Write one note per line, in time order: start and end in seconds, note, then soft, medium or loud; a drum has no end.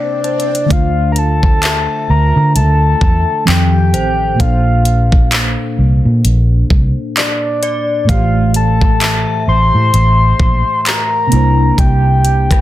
0.00 0.18 C3 medium
0.00 0.19 A#3 medium
0.00 0.20 D4 medium
0.00 0.21 E4 medium
0.00 0.22 C5 medium
0.00 0.73 D5 medium
0.00 0.72 E5 medium
0.00 0.21 G5 medium
0.00 swell medium
0.24 0.67 A5 medium
0.24 closed hi-hat soft
0.40 closed hi-hat soft
0.55 closed hi-hat medium
0.66 3.41 D3 medium
0.66 3.42 A3 medium
0.70 1.86 D2 loud
0.70 3.43 D4 medium
0.70 3.45 F4 medium
0.70 1.11 F5 loud
0.70 kick loud
0.70 closed hi-hat medium
0.75 3.46 C5 medium
1.12 1.20 A#5 medium
1.12 closed hi-hat medium
1.18 2.10 A5 loud
1.43 kick loud
1.63 3.90 E5 medium
1.63 clap loud
1.63 closed hi-hat medium
2.09 2.31 D2 medium
2.09 2.53 A#5 loud
2.36 2.57 D3 loud
2.55 2.93 D2 medium
2.55 3.44 A5 loud
2.55 closed hi-hat medium
3.01 3.23 E2 medium
3.01 kick loud
3.45 3.94 F2 loud
3.45 4.40 D#3 medium
3.45 4.39 F3 medium
3.45 4.39 C4 medium
3.45 4.40 G4 medium
3.45 4.41 G5 loud
3.45 clap loud
3.45 closed hi-hat medium
3.50 4.40 A4 medium
3.94 4.32 A1 loud
3.94 4.82 C5 medium
3.94 closed hi-hat medium
4.35 8.02 A#2 medium
4.35 8.04 A#3 medium
4.39 5.55 A#1 loud
4.39 8.05 D4 medium
4.39 8.06 A4 medium
4.39 5.32 F5 loud
4.39 kick loud
4.39 closed hi-hat medium
4.44 8.07 C5 medium
4.85 closed hi-hat medium
5.12 kick loud
5.32 clap loud
5.32 closed hi-hat medium
5.78 6.00 C2 medium
6.05 6.21 A#2 medium
6.24 6.62 A#1 loud
6.24 closed hi-hat medium
6.70 6.93 C2 medium
6.70 kick loud
7.17 8.05 D5 medium
7.17 clap loud
7.17 closed hi-hat medium
7.63 8.51 D5 medium
7.63 closed hi-hat medium
8.04 11.26 A2 medium
8.04 11.27 A3 medium
8.09 9.24 A1 loud
8.09 11.28 E3 medium
8.09 11.29 G4 medium
8.09 8.52 F5 loud
8.09 kick loud
8.09 closed hi-hat medium
8.14 11.30 C5 medium
8.54 9.44 A5 loud
8.54 closed hi-hat medium
8.81 kick loud
9.01 11.64 E5 medium
9.01 clap loud
9.01 closed hi-hat medium
9.48 9.70 A1 loud
9.48 10.81 C6 loud
9.74 9.90 A2 medium
9.94 10.32 A1 loud
9.94 closed hi-hat medium
10.40 10.62 A#1 medium
10.40 kick loud
10.81 10.89 C6 medium
10.86 11.79 A#5 loud
10.86 clap loud
10.86 closed hi-hat medium
11.27 12.61 C3 medium
11.27 12.61 A#3 medium
11.32 11.70 C2 loud
11.32 12.61 D4 medium
11.32 12.61 E4 medium
11.32 closed hi-hat medium
11.36 12.61 C5 medium
11.78 12.61 C2 loud
11.78 12.61 G5 loud
11.78 kick loud
11.78 closed hi-hat medium
12.25 closed hi-hat medium
12.51 kick loud
12.51 cross-stick medium
12.51 closed hi-hat medium